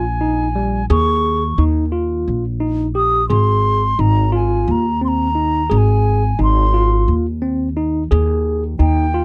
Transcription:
Already playing: upright bass A#1, flute G#5
0.21 tine electric piano D#4
0.55 tine electric piano G3
0.90 upright bass D#2, tine electric piano G#4, flute C#6
1.58 upright bass D#2, tine electric piano D#4
1.92 tine electric piano F4
2.28 upright bass A#1
2.60 tine electric piano D#4
2.95 tine electric piano G4, flute D#6
3.29 upright bass G#1, tine electric piano G#4, flute C6
3.99 upright bass G#1, tine electric piano D#4, flute A#5
4.32 tine electric piano F4, flute G#5
4.68 upright bass D#2, flute A#5
5.01 tine electric piano C4, flute C6
5.08 flute A#5
5.35 tine electric piano D#4
5.70 upright bass G#1, tine electric piano G#4, flute A#5
5.78 flute G#5
6.39 upright bass G#1, tine electric piano D#4
6.43 flute C6
6.74 tine electric piano F4
7.08 upright bass D#2
7.42 tine electric piano C4
7.77 tine electric piano D#4
8.11 upright bass D#2, tine electric piano G#4
8.79 upright bass D#2, tine electric piano D#4, flute G5
9.14 tine electric piano F4

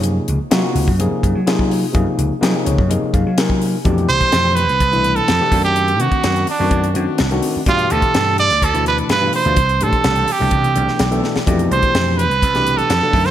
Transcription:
Already playing: slap bass F#2, tine electric piano C3 F3 A#3 D#4 G#4
0.04 closed hi-hat
0.28 slap bass C#2, closed hi-hat
0.40 muted slap bass stroke
0.51 tine electric piano C3 A#3 D#4 F4 F#4, slap bass F#3, snare, closed hi-hat
0.75 slap bass C#2, open hi-hat
0.88 slap bass F#2, kick
0.99 tine electric piano C3 F3 A#3 D#4 G#4, closed hi-hat
1.11 muted slap bass stroke
1.23 slap bass F#2, kick, closed hi-hat
1.35 slap bass F#3
1.47 tine electric piano C3 A#3 D#4 F4 G#4, snare, closed hi-hat
1.59 kick
1.71 open hi-hat
1.93 slap bass F#2, tine electric piano C3 F3 A#3 D#4 G#4, kick, closed hi-hat
2.18 slap bass C#2, closed hi-hat
2.41 tine electric piano C3 F3 A#3 D#4 G#4, slap bass F#3, snare, closed hi-hat
2.65 slap bass C#2, tine electric piano C#5, closed hi-hat
2.78 slap bass F#2, kick
2.88 tine electric piano C3 F3 A#3 D#4 G#4 D#5, closed hi-hat
3.03 muted slap bass stroke
3.14 slap bass F#2, tine electric piano F5, kick, closed hi-hat
3.27 slap bass F#3
3.37 tine electric piano C3 A#3 D#4 F4 A#4 G#5, snare, closed hi-hat
3.50 kick
3.62 open hi-hat
3.84 slap bass F2, tine electric piano B2 E3 A3 D4 G4, kick, closed hi-hat
3.98 closed hi-hat
4.08 slap bass C2, trumpet C5, closed hi-hat
4.21 muted slap bass stroke, kick, closed hi-hat
4.32 slap bass F2, snare, closed hi-hat
4.55 trumpet B4, closed hi-hat
4.69 slap bass C2, closed hi-hat
4.80 slap bass C2, kick, closed hi-hat
4.92 tine electric piano B2 E3 A3 D4 E4, closed hi-hat
5.04 closed hi-hat
5.16 trumpet A4, closed hi-hat
5.28 slap bass F2, snare, closed hi-hat
5.39 tine electric piano B2 E3 A3 D4 G4
5.52 slap bass F#2, tine electric piano D#3 A3 C4 D4 F#4, kick, open hi-hat
5.64 trumpet G4, closed hi-hat
5.76 closed hi-hat
5.88 closed hi-hat
5.99 slap bass C3, tine electric piano D#3 A3 C4 D4 F#4, trumpet F#4, closed hi-hat
6.12 kick, closed hi-hat
6.24 slap bass F#2, snare, closed hi-hat
6.36 closed hi-hat
6.47 trumpet D4, open hi-hat
6.59 slap bass F#2, tine electric piano D#3 A3 C4 D4 F#4
6.71 slap bass F#2, kick, closed hi-hat
6.84 closed hi-hat
6.94 slap bass F#2, tine electric piano D#3 A3 C4 D4 F#4, closed hi-hat
7.18 slap bass C2, snare, closed hi-hat
7.31 tine electric piano D#3 A3 C4 D4 F#4, closed hi-hat
7.42 open hi-hat
7.56 muted slap bass stroke
7.66 slap bass G2, tine electric piano B2 E3 A3 D4 G4, trumpet F4, kick, closed hi-hat
7.79 closed hi-hat
7.90 slap bass D2, trumpet A4, closed hi-hat
8.02 muted slap bass stroke, kick, closed hi-hat
8.14 slap bass G2, snare, closed hi-hat
8.38 trumpet D5, closed hi-hat
8.51 slap bass D2, snare, closed hi-hat
8.62 slap bass D2, trumpet A4, kick, closed hi-hat
8.73 tine electric piano B2 E3 A3 D4 E4, closed hi-hat
8.86 trumpet B4, closed hi-hat
8.98 closed hi-hat
9.09 slap bass G2, trumpet B4, snare, closed hi-hat
9.21 tine electric piano B2 E3 A3 D4 F4
9.33 trumpet C5, open hi-hat
9.45 slap bass D2, tine electric piano B2 E3 A3 D4 F4, closed hi-hat
9.57 slap bass C2, kick, closed hi-hat
9.69 closed hi-hat
9.81 slap bass A2, tine electric piano B2 E3 A3 D4 G4, trumpet A4, closed hi-hat
9.93 muted slap bass stroke, kick, closed hi-hat
10.04 slap bass C2, snare, closed hi-hat
10.16 closed hi-hat
10.28 open hi-hat
10.32 trumpet G4
10.39 slap bass C2, tine electric piano B2 E3 A3 D4 A4
10.51 slap bass C2, kick, closed hi-hat
10.64 closed hi-hat
10.74 slap bass C2, tine electric piano B2 E3 A3 D4 A4, closed hi-hat
10.88 snare
10.99 slap bass B1, snare, closed hi-hat
11.10 tine electric piano B2 E3 A3 D4 A4, closed hi-hat
11.24 snare
11.36 muted slap bass stroke, snare
11.46 slap bass F2, tine electric piano B2 E3 A3 D4 G4, kick, closed hi-hat
11.59 closed hi-hat
11.71 slap bass C2, trumpet C5, closed hi-hat
11.83 muted slap bass stroke, kick, closed hi-hat
11.94 slap bass F2, snare, closed hi-hat
12.17 trumpet B4, closed hi-hat
12.30 slap bass C2, closed hi-hat
12.42 slap bass C2, kick, closed hi-hat
12.54 tine electric piano B2 E3 A3 D4 G4, snare, closed hi-hat
12.67 closed hi-hat
12.77 trumpet A4, closed hi-hat
12.90 slap bass F2, snare, closed hi-hat
13.02 tine electric piano B2 E3 A3 D4 A4
13.12 slap bass F#2, tine electric piano D3 F#3 A3 C4 D#4, kick, open hi-hat
13.26 trumpet C5, snare, closed hi-hat

